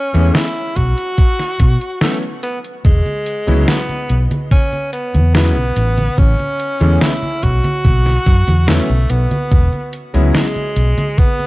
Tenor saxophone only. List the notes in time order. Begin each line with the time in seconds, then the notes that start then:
Already playing: C#4
0.35 E4
0.77 F#4
2.02 A3
2.43 B3
2.85 G#3
3.68 B3
4.52 C#4
4.93 B3
5.35 B3
6.18 C#4
7.02 E4
7.43 F#4
8.68 A3
9.10 B3
10.35 G#3
11.19 B3